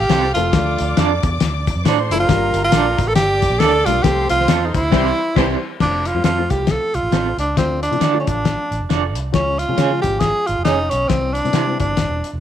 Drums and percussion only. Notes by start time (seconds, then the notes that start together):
0.10 snare, closed hi-hat
0.35 closed hi-hat
0.53 kick, snare, closed hi-hat
0.79 closed hi-hat
0.97 snare, closed hi-hat
1.23 kick, closed hi-hat
1.40 snare, closed hi-hat
1.67 kick, closed hi-hat
1.85 snare, closed hi-hat
2.11 closed hi-hat
2.29 kick, snare, closed hi-hat
2.54 closed hi-hat
2.72 snare, closed hi-hat
2.98 kick, closed hi-hat
3.16 snare, closed hi-hat
3.42 kick, closed hi-hat
3.60 snare, closed hi-hat
3.86 closed hi-hat
4.04 kick, snare, closed hi-hat
4.29 closed hi-hat
4.41 snare
4.48 snare, closed hi-hat
4.74 kick, closed hi-hat
4.92 kick, snare, crash
5.36 kick, snare, crash
5.80 kick, snare, crash
6.05 closed hi-hat
6.24 snare, closed hi-hat
6.50 kick, closed hi-hat
6.67 kick, snare, closed hi-hat
6.94 closed hi-hat
7.12 snare, closed hi-hat
7.39 closed hi-hat
7.57 kick, snare, closed hi-hat
7.83 closed hi-hat
7.92 closed hi-hat
8.01 snare, closed hi-hat
8.27 kick, closed hi-hat
8.45 kick, snare, closed hi-hat
8.72 closed hi-hat
8.90 snare, closed hi-hat
9.15 closed hi-hat
9.34 kick, snare, closed hi-hat
9.59 closed hi-hat
9.78 snare, closed hi-hat
10.03 kick, closed hi-hat
10.20 kick, snare, closed hi-hat
10.47 closed hi-hat
10.65 snare, closed hi-hat
10.91 closed hi-hat
11.10 kick, snare, closed hi-hat
11.35 closed hi-hat
11.45 closed hi-hat
11.53 snare, closed hi-hat
11.80 kick, closed hi-hat
11.97 kick, snare, closed hi-hat
12.24 closed hi-hat